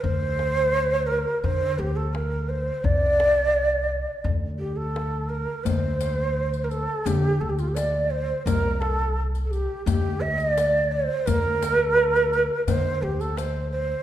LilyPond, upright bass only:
\new Staff \with { instrumentName = "Upright bass" } { \clef bass \time 4/4 \tempo 4 = 86 d,2 d8 d,4. | c,2 d,2 | d,2 d8 d,4. | c,2 d,2 |
d,2 d8 d,4. | }